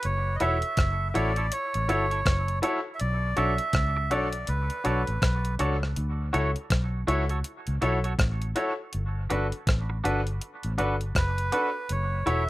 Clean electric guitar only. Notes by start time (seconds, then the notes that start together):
0.41 E4 A4 C#5
1.15 E4 A4 C#5
1.37 E4 A4 C#5
1.89 E4 A4 C#5
2.11 E4 A4 C#5
2.63 E4 A4 C#5
3.37 F#4 A4 D5
3.97 muted clean electric guitar stroke
4.11 F#4 A4 D5
4.85 F#4 A4 D5
5.60 F#4 A4 D5
6.33 F#4 A4 C#5
7.07 F#4 A4 C#5
7.30 F#4 A4 C#5
7.82 F#4 A4 C#5
8.04 F#4 A4 C#5
8.56 F#4 A4 C#5
9.30 D4 F#4 B4
9.90 muted clean electric guitar stroke
10.04 D4 F#4 B4
10.78 D4 F#4 B4
11.52 D4 F#4 B4
12.26 E4 A4 C#5